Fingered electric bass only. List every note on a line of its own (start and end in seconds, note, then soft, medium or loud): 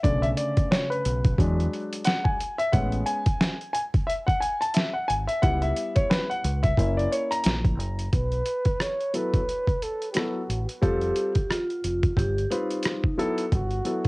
0.04 0.32 B1 loud
1.06 1.33 B1 medium
1.39 1.67 E2 loud
2.74 3.02 A1 loud
5.10 5.26 G#1 medium
5.43 5.71 C#2 loud
6.44 6.72 C#2 medium
6.78 7.06 F#1 loud
7.46 7.79 A#1 loud
7.79 8.07 F#1 medium
8.13 8.41 B1 medium
10.49 10.65 A1 medium
10.83 11.11 F1 medium
11.84 12.12 F1 medium
12.17 12.45 G1 loud
13.52 13.80 G1 medium